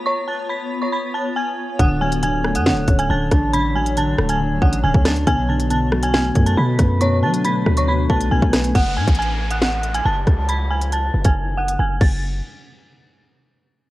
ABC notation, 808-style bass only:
X:1
M:4/4
L:1/16
Q:1/4=138
K:F#m
V:1 name="808-style bass" clef=bass
z16 | D,,,6- D,,, F,,3/2 D,,,3/2 D,,,2 D,,,2 A,,,2- | A,,,6 D,,,4 A,,,2 D,,, D,,3 | B,,,8- B,,,2 F,,2 B,,2 F,,2- |
F,,2 F,4 D,,4 B,,,2 B,,, B,,,3 | F,,,2 A,, A,,,8- A,,, F,,,2 C,,2- | C,,6 F,,, F,,,4- F,,, F,,,2 F,,,2- | F,,,2 z12 z2 |]